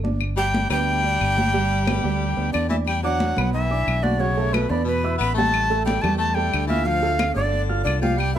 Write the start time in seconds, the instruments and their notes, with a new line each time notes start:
Already playing: fingered electric bass G1
0.04 upright piano D4 D5, high conga
0.21 high conga, claves
0.37 baritone saxophone G3, upright piano G4 G5, flute G5, high conga
0.54 high conga
0.70 fingered electric bass D2, baritone saxophone G3, upright piano B3 B4, flute G5, high conga, claves
0.88 high conga
1.04 upright piano D4 D5, high conga
1.21 fingered electric bass G1, high conga, claves
1.37 upright piano G4 G5, high conga
1.54 upright piano G3 G4, high conga
1.71 high conga
1.87 upright piano B3 B4, high conga, claves
2.04 fingered electric bass D2, upright piano G3 G4
2.22 high conga
2.37 fingered electric bass D2, upright piano B3 B4, high conga
2.53 fingered electric bass E2, baritone saxophone D3, flute D5, high conga, claves
2.69 baritone saxophone E3, upright piano D4 D5, flute E5, high conga
2.86 baritone saxophone G3, flute G5, high conga, claves
3.03 baritone saxophone F#3, upright piano D4 D5 D6, flute F#5, high conga
3.20 high conga
3.37 fingered electric bass B1, upright piano B3 B4 B5, high conga, low conga, claves
3.53 baritone saxophone E3, flute E5, high conga
3.70 upright piano D4 D5 D6, high conga
3.87 fingered electric bass B1, high conga, claves
4.02 baritone saxophone D3, upright piano F#4 F#5 F#6, flute D5, high conga
4.18 baritone saxophone C#3, upright piano F#3 F#4 F#5, flute C#5, high conga
4.37 upright piano A3 A4 A5, high conga
4.52 baritone saxophone B2, flute B4, high conga, claves
4.68 fingered electric bass E2, baritone saxophone D3, upright piano B3 B4 B5, flute D5
4.84 baritone saxophone B2, flute B4, high conga
5.04 upright piano E4 E5 E6, high conga
5.18 fingered electric bass A1, baritone saxophone B3, flute B5, high conga, claves
5.34 upright piano G3, baritone saxophone A3, flute A5
5.38 upright piano G4 G5, high conga
5.54 high conga, claves
5.70 upright piano A3 A4 A5, high conga
5.85 baritone saxophone G3, flute G5, high conga
6.02 fingered electric bass E2, upright piano G3 G4 G5, baritone saxophone A3, flute A5, high conga, low conga, claves
6.18 baritone saxophone A3, flute A5, high conga
6.33 baritone saxophone G3, upright piano A3 A4 A5, flute G5, high conga
6.54 fingered electric bass D2, high conga, claves
6.67 baritone saxophone E3, upright piano F4 F5 F6, flute E5, high conga
6.84 baritone saxophone F3, upright piano F3 F4 F5, flute F5, high conga
7.02 upright piano A3 A4 A5, high conga
7.19 high conga, claves
7.33 fingered electric bass G1, baritone saxophone D3, upright piano D4 D5 D6, flute D5
7.53 high conga
7.69 upright piano F4 F5 F6, high conga
7.84 fingered electric bass C2, baritone saxophone D3, flute D5, high conga, claves
8.01 baritone saxophone F3, upright piano G3 G4 G5, flute F5, high conga
8.17 baritone saxophone G3, flute G5, high conga, claves
8.34 baritone saxophone F#3, upright piano B3, flute F#5